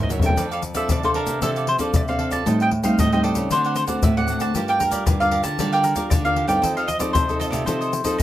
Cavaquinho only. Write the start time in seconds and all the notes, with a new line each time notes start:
0.09 F#4 A#4 C#5 E5
0.22 A#4 C#5 E5
0.36 D4 A4 D5 F5
0.51 A4 D5 F5
0.63 muted cavaquinho stroke
0.75 A4 D5 F5
0.89 D4 A4 D5 F5
1.04 A4 D5 F5
1.15 D4 A4 D5 F5
1.42 D4 A4 D5 F5
1.56 A4 D5 F5
1.69 muted cavaquinho stroke
1.80 A4 D5 F5
2.09 A4 D5 F5
2.19 D4 A4 D5 F5
2.31 A4 D5 F5
2.46 A4 C5 D#5 G5
2.61 C5 D#5 G5
2.72 muted cavaquinho stroke
2.83 C5 D#5 G5
2.99 A4 C5 D#5 G5
3.13 C5 D#5 G5
3.23 A4 C5 D#5 G5
3.51 D4 C5 D5 F#5
3.66 C5 D5 F#5
3.76 muted cavaquinho stroke
3.87 C5 D5 F#5
4.17 C5 D5 F#5
4.29 D4 C5 D5 F#5
4.41 C5 D5 F#5
4.55 G4 A#4 D5 F5
4.69 A#4 D5 F5
4.80 muted cavaquinho stroke
4.91 A#4 D5 F5
5.06 G4 A#4 D5 F5
5.21 A#4 D5 F5
5.31 G4 A#4 D5 F5
5.59 G4 A#4 D5 F5
5.72 A#4 D5 F5
5.84 muted cavaquinho stroke
5.96 A#4 D5 F5
6.25 A#4 D5 F5
6.36 G4 A#4 D5 F5
6.48 A#4 D5 F5
6.62 F4 A4 C5 D#5
6.77 A4 C5 D#5
6.88 muted cavaquinho stroke
6.99 A4 C5 D#5
7.15 F4 A4 C5 D#5
7.28 A4 C5 D#5
7.40 F4 A4 C5 D#5
7.67 F4 A4 C5 D#5
7.81 A4 C5 D#5
7.93 muted cavaquinho stroke
8.05 A4 C5 D#5